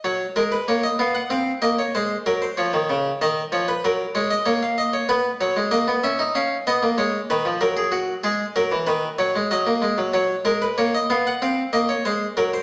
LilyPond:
<<
  \new Staff \with { instrumentName = "Harpsichord" } { \time 4/4 \key fis \mixolydian \tempo 4 = 95 cis''8 ais'16 b'16 cis''16 dis''16 eis''16 fis''16 eis''8 dis''16 cis''16 bis'8 ais'16 bis'16 | cis''4 dis''8 cis''16 b'16 ais'8 cis''16 dis''16 cis''16 eis''16 dis''16 cis''16 | b'8 cis''8 dis''8 e''8 eis''8 dis''8 cis''8 b'8 | ais'16 gis'16 fis'8 gis'8 ais'8 b'8 cis''8 dis''4 |
cis''8 ais'16 b'16 cis''16 dis''16 eis''16 fis''16 eis''8 dis''16 cis''16 bis'8 ais'16 bis'16 | }
  \new Staff \with { instrumentName = "Harpsichord" } { \clef bass \time 4/4 \key fis \mixolydian fis8 gis8 ais8 b8 bis8 ais8 gis8 fis8 | eis16 dis16 cis8 dis8 eis8 fis8 gis8 ais4 | b8 fis16 gis16 ais16 b16 cis'16 dis'16 cis'8 b16 ais16 gis8 dis16 eis16 | fis4 gis8 fis16 e16 dis8 fis16 gis16 fis16 ais16 gis16 fis16 |
fis8 gis8 ais8 b8 bis8 ais8 gis8 fis8 | }
>>